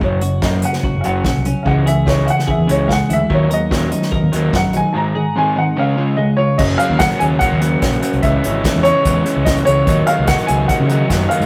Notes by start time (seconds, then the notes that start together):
0.01 F#1 F#2 C#3 F#3 C#5, kick
0.21 F#2 C#3 F#4, closed hi-hat
0.42 F#2 C#3 F#3 A#3 D#5, kick, snare
0.62 F#2 C#3 C#4 F#5, closed hi-hat
0.73 snare
0.83 F#2 C#3 F#4, kick
0.95 F#1
1.01 F#2 C#4 F5, closed hi-hat
1.05 F#1 C#3 F#3 F#5
1.24 A#1 F#2 C#3 F#3, kick, snare
1.36 C2
1.45 F#2 C#3 C#4, closed hi-hat
1.63 C#2 C#3 E3 G#3 F5, kick
1.67 F#5
1.86 C#3 E3 G#4 E5, closed hi-hat
2.06 C#3 E3 G#3 C#4 C#5, kick, snare
2.26 C#3 E3 E4 F5, closed hi-hat
2.30 F#5
2.39 snare
2.47 C#3 E3 G#4 E5, kick
2.58 E2
2.67 C#2 C#3 E3 G#3 E4 C#5, closed hi-hat
2.88 C#3 E3 G#3 F5, kick, snare
2.93 F#5
3.09 D2 C#3 E3 E4, closed hi-hat
3.13 E5
3.30 D#2 D#3 F#3 A#3, kick
3.34 C#5
3.50 D#3 F#3 A#4 D#5, closed hi-hat
3.71 D#3 F#3 A#3 C#4, kick, snare
3.91 D#3 F#3 D#4, closed hi-hat
4.02 snare
4.11 D#3 F#3 A#4, kick
4.22 D#2
4.32 D#2 D#3 F#3 A#3 D#4, closed hi-hat
4.53 F#2 D#3 F#3 F#5, kick, snare
4.64 A#1
4.73 D#3 F#3 D#4 G#5, closed hi-hat
4.93 G#2 D#3 G#3 A5
4.97 A#5
5.15 G#2 D#3 G#4
5.36 G#2 D#3 G#3 C4 G#5
5.56 G#2 D#3 D#4 F#5
5.77 C#3 G#3 C#4 F5
5.97 C#3 G#3 C#4 F4
6.17 C#3 G#3 D#5
6.37 C#3 G#3 F4 C#5
6.58 F#1 F#2 C#3 F#3 A#3 C#4 D#5, kick, crash
6.78 F#2 C#3 F#3 A#3 C#4 F5, closed hi-hat
6.90 D#2
6.99 F#2 C#3 F#3 A#3 C#4 F#5, kick, snare, closed hi-hat
7.10 closed hi-hat
7.19 D#2 F#2 C#3 F#3 A#3 C#4 G#5, closed hi-hat
7.39 F#2 C#3 F#3 A#3 C#4 F#5, kick, closed hi-hat
7.52 D#2
7.60 F#2 C#3 F#3 A#3 C#4, closed hi-hat
7.81 A#1 F#2 C#3 F#3 A#3 C#4, kick, snare, closed hi-hat
7.93 closed hi-hat
8.01 F#2 C#3 F#3 A#3 C#4, closed hi-hat
8.13 C2, closed hi-hat
8.22 C#2 C#3 E3 G#3 C#4 E5, kick, closed hi-hat
8.43 G#1 C#3 E3 G#3 C#4, closed hi-hat
8.64 C#3 E3 G#3 C#4, kick, snare, closed hi-hat
8.76 E2
8.83 C#3 E3 G#3 C#4 C#5, closed hi-hat
9.05 E2 C#3 E3 G#3 C#4, kick, closed hi-hat
9.25 C#3 E3 G#3 C#4, closed hi-hat
9.36 C#2
9.45 C#3 E3 G#3 C#4 D#5, kick, snare, closed hi-hat
9.57 closed hi-hat
9.65 C#2 C#3 E3 G#3 C#4 C#5, closed hi-hat
9.87 D#2 D#3 F#3 A#3 D#4, kick, closed hi-hat
10.07 D#3 F#3 A#3 D#4 F5, closed hi-hat
10.19 C#2
10.27 D#3 F#3 A#3 D#4 F#5, kick, snare, closed hi-hat
10.38 closed hi-hat
10.47 C#2 D#3 F#3 A#3 D#4 G#5, closed hi-hat
10.68 D#3 F#3 A#3 D#4 F#5, kick, closed hi-hat
10.80 C#3
10.89 D#3 F#3 A#3 D#4, closed hi-hat
11.09 F#2 D#3 F#3 A#3 D#4, kick, snare, closed hi-hat
11.21 closed hi-hat
11.29 D#3 F#3 A#3 D#4 F5, closed hi-hat
11.40 G#2, closed hi-hat